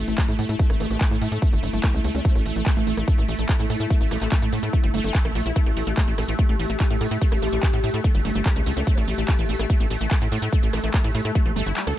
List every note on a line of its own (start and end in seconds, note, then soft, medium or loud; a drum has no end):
0.00 11.98 A3 medium
0.00 5.58 E4 medium
0.00 impact medium
0.08 0.14 A1 medium
0.08 0.14 A3 medium
0.08 cross-stick soft
0.08 closed hi-hat medium
0.18 0.24 A3 medium
0.18 kick loud
0.18 clap loud
0.18 closed hi-hat medium
0.28 0.35 A2 medium
0.28 0.37 A3 medium
0.39 0.45 A2 loud
0.39 0.45 A3 medium
0.39 open hi-hat medium
0.49 0.56 A2 loud
0.49 0.55 A3 medium
0.49 closed hi-hat medium
0.59 0.68 A3 medium
0.59 kick loud
0.59 closed hi-hat medium
0.70 0.76 A1 medium
0.70 0.76 A3 medium
0.70 cross-stick medium
0.80 0.87 A1 loud
0.80 0.86 A3 medium
0.80 0.87 A3 medium
0.80 open hi-hat loud
0.90 0.97 A1 medium
0.90 0.99 A3 medium
0.90 0.97 A3 medium
0.90 closed hi-hat medium
1.01 1.07 A3 medium
1.01 kick loud
1.01 clap loud
1.01 closed hi-hat medium
1.11 1.18 A2 medium
1.11 1.17 A3 medium
1.21 1.28 A2 loud
1.21 1.31 A3 medium
1.21 open hi-hat loud
1.32 1.39 A2 loud
1.32 1.38 A3 medium
1.32 closed hi-hat medium
1.42 1.48 A3 medium
1.42 kick loud
1.42 closed hi-hat medium
1.53 1.59 G1 medium
1.53 1.62 A3 medium
1.63 1.70 G1 loud
1.63 1.69 A3 medium
1.63 open hi-hat loud
1.73 1.80 G1 medium
1.73 1.79 A3 medium
1.73 closed hi-hat medium
1.84 1.93 A3 medium
1.84 kick loud
1.84 cross-stick medium
1.84 clap loud
1.84 closed hi-hat medium
1.94 2.01 C#2 medium
1.94 2.00 A3 medium
2.04 2.11 C#2 loud
2.04 2.10 A3 medium
2.04 open hi-hat loud
2.15 2.21 C#2 loud
2.15 2.24 A3 medium
2.15 2.46 C#4 medium
2.15 closed hi-hat medium
2.25 2.31 A3 medium
2.25 kick loud
2.25 closed hi-hat medium
2.35 2.42 A1 medium
2.35 2.41 A3 medium
2.35 cross-stick soft
2.46 2.52 A1 loud
2.46 2.55 A3 medium
2.46 open hi-hat loud
2.56 2.63 A1 medium
2.56 2.62 A3 medium
2.56 closed hi-hat medium
2.66 2.72 A3 medium
2.66 kick loud
2.66 clap loud
2.66 closed hi-hat medium
2.77 2.83 A1 medium
2.77 2.86 A3 medium
2.87 2.94 A1 loud
2.87 2.93 A3 medium
2.87 open hi-hat medium
2.97 3.04 A1 loud
2.97 3.03 A3 medium
2.97 cross-stick medium
2.97 closed hi-hat medium
3.08 3.17 A3 medium
3.08 kick loud
3.08 closed hi-hat medium
3.18 3.25 A1 medium
3.18 3.24 A3 medium
3.28 3.35 A1 loud
3.28 3.34 A3 medium
3.28 open hi-hat loud
3.39 3.45 A1 medium
3.39 3.48 A3 medium
3.39 closed hi-hat medium
3.49 3.55 A3 medium
3.49 kick loud
3.49 cross-stick soft
3.49 clap loud
3.49 closed hi-hat medium
3.59 3.66 A2 medium
3.59 3.65 A3 medium
3.70 3.76 A2 loud
3.70 3.79 A3 medium
3.70 open hi-hat loud
3.80 3.87 A2 loud
3.80 3.86 A3 medium
3.80 closed hi-hat medium
3.90 3.96 A3 medium
3.90 kick loud
3.90 closed hi-hat medium
4.01 4.08 A1 medium
4.01 4.10 A3 medium
4.11 4.18 A1 loud
4.11 4.17 A3 medium
4.11 4.18 A3 medium
4.11 cross-stick medium
4.11 open hi-hat loud
4.21 4.28 A1 loud
4.21 4.27 A3 medium
4.21 4.28 A3 medium
4.21 clap soft
4.21 closed hi-hat medium
4.32 4.41 A3 medium
4.32 kick loud
4.32 clap loud
4.32 closed hi-hat medium
4.42 4.49 A2 medium
4.42 4.48 A3 medium
4.53 4.59 A2 medium
4.53 4.59 A3 medium
4.53 open hi-hat loud
4.63 4.70 A2 medium
4.63 4.72 A3 medium
4.63 cross-stick soft
4.63 closed hi-hat medium
4.73 4.79 A3 medium
4.73 kick loud
4.73 closed hi-hat medium
4.84 4.90 G1 medium
4.84 4.90 A3 medium
4.94 5.01 G1 loud
4.94 5.03 A3 loud
4.94 open hi-hat loud
5.04 5.11 G1 medium
5.04 5.10 A3 loud
5.04 closed hi-hat medium
5.15 5.24 A3 medium
5.15 kick loud
5.15 clap loud
5.15 closed hi-hat medium
5.25 5.32 A#1 medium
5.25 5.31 A3 medium
5.25 cross-stick medium
5.35 5.42 A#1 loud
5.35 5.41 A3 medium
5.35 open hi-hat loud
5.46 5.52 A#1 loud
5.46 5.49 E4 medium
5.46 closed hi-hat medium
5.56 5.62 A3 medium
5.56 11.98 G4 medium
5.56 kick loud
5.56 cross-stick soft
5.56 closed hi-hat medium
5.66 5.73 A1 medium
5.66 5.75 A3 medium
5.77 5.83 A1 loud
5.77 5.83 A3 medium
5.77 open hi-hat loud
5.87 5.94 A1 medium
5.87 5.93 A3 medium
5.87 closed hi-hat medium
5.97 6.06 A3 medium
5.97 kick loud
5.97 clap loud
5.97 closed hi-hat medium
6.08 6.14 A1 medium
6.08 6.14 A3 medium
6.18 6.25 A1 loud
6.18 6.24 A3 medium
6.18 cross-stick medium
6.18 open hi-hat medium
6.28 6.35 A1 loud
6.28 6.37 A3 medium
6.28 closed hi-hat medium
6.39 6.45 A3 medium
6.39 kick loud
6.39 closed hi-hat medium
6.49 6.56 A1 medium
6.49 6.55 A3 medium
6.59 6.66 A1 loud
6.59 6.68 A3 medium
6.59 open hi-hat loud
6.70 6.76 A1 medium
6.70 6.76 A3 medium
6.70 cross-stick soft
6.70 closed hi-hat medium
6.80 6.86 A3 medium
6.80 kick loud
6.80 clap loud
6.80 closed hi-hat medium
6.90 6.97 A2 medium
6.90 6.99 A3 medium
7.01 7.08 A2 loud
7.01 7.07 A3 medium
7.01 open hi-hat medium
7.11 7.18 A2 medium
7.11 7.17 A3 medium
7.11 closed hi-hat medium
7.22 7.30 A3 medium
7.22 kick loud
7.22 closed hi-hat medium
7.32 7.39 A1 medium
7.32 7.38 A3 medium
7.32 cross-stick medium
7.42 7.49 A1 loud
7.42 7.48 A3 medium
7.42 7.49 A3 medium
7.42 open hi-hat loud
7.53 7.59 A1 medium
7.53 7.62 A3 medium
7.53 7.59 A3 medium
7.53 closed hi-hat medium
7.63 7.69 A3 medium
7.63 kick loud
7.63 clap loud
7.63 closed hi-hat medium
7.73 7.80 A2 medium
7.73 7.79 A3 medium
7.84 7.90 A2 loud
7.84 7.93 A3 medium
7.84 open hi-hat medium
7.94 8.01 A2 loud
7.94 8.00 A3 medium
7.94 closed hi-hat medium
8.04 8.10 A3 medium
8.04 kick loud
8.04 closed hi-hat medium
8.15 8.21 G1 medium
8.15 8.24 A3 medium
8.25 8.32 G1 loud
8.25 8.31 A3 medium
8.25 open hi-hat loud
8.35 8.42 G1 medium
8.35 8.41 A3 medium
8.35 closed hi-hat medium
8.46 8.55 A3 medium
8.46 kick loud
8.46 cross-stick medium
8.46 clap loud
8.46 closed hi-hat medium
8.56 8.63 C#2 medium
8.56 8.62 A3 medium
8.66 8.73 C#2 loud
8.66 8.72 A3 medium
8.66 open hi-hat medium
8.77 8.83 C#2 loud
8.77 8.86 A3 medium
8.77 9.08 C#4 loud
8.77 closed hi-hat medium
8.87 8.93 A3 medium
8.87 kick loud
8.87 closed hi-hat medium
8.97 9.04 A1 medium
8.97 9.03 A3 medium
8.97 cross-stick soft
9.08 9.14 A1 loud
9.08 9.17 A3 medium
9.08 open hi-hat loud
9.18 9.25 A1 medium
9.18 9.24 A3 medium
9.18 closed hi-hat medium
9.28 9.34 A3 medium
9.28 kick loud
9.28 clap loud
9.28 closed hi-hat medium
9.39 9.45 A1 medium
9.39 9.48 A3 medium
9.49 9.56 A1 loud
9.49 9.55 A3 medium
9.49 open hi-hat medium
9.59 9.66 A1 loud
9.59 9.65 A3 medium
9.59 cross-stick medium
9.59 closed hi-hat medium
9.70 9.79 A3 medium
9.70 kick loud
9.70 closed hi-hat medium
9.80 9.87 A1 medium
9.80 9.86 A3 medium
9.90 9.97 A1 loud
9.90 9.96 A3 medium
9.90 open hi-hat loud
10.01 10.08 A1 medium
10.01 10.10 A3 medium
10.01 closed hi-hat medium
10.11 10.17 A3 medium
10.11 kick loud
10.11 cross-stick soft
10.11 clap loud
10.11 closed hi-hat medium
10.21 10.28 A2 medium
10.21 10.28 A3 medium
10.32 10.39 A2 loud
10.32 10.41 A3 medium
10.32 open hi-hat medium
10.42 10.49 A2 loud
10.42 10.48 A3 medium
10.42 closed hi-hat medium
10.53 10.59 A3 medium
10.53 kick loud
10.53 closed hi-hat medium
10.63 10.70 A1 medium
10.63 10.72 A3 medium
10.73 10.80 A1 medium
10.73 10.80 A3 medium
10.73 10.79 A3 medium
10.73 cross-stick medium
10.73 open hi-hat loud
10.84 10.90 A1 medium
10.84 10.90 A3 medium
10.84 closed hi-hat medium
10.94 11.03 A3 medium
10.94 kick loud
10.94 clap loud
10.94 closed hi-hat medium
11.04 11.11 A2 medium
11.04 11.10 A3 medium
11.15 11.21 A2 loud
11.15 11.21 A3 medium
11.15 open hi-hat medium
11.25 11.32 A2 medium
11.25 11.34 A3 medium
11.25 cross-stick soft
11.25 closed hi-hat medium
11.35 11.41 A3 medium
11.35 kick loud
11.35 closed hi-hat medium
11.46 11.52 A#1 medium
11.46 11.52 A3 medium
11.56 11.63 G1 loud
11.56 11.62 A3 loud
11.56 open hi-hat loud
11.66 11.73 G1 medium
11.66 11.72 E4 medium
11.66 closed hi-hat medium
11.77 11.80 G3 medium
11.77 clap loud
11.77 closed hi-hat medium
11.87 11.94 D2 medium
11.87 11.96 A4 medium
11.87 cross-stick medium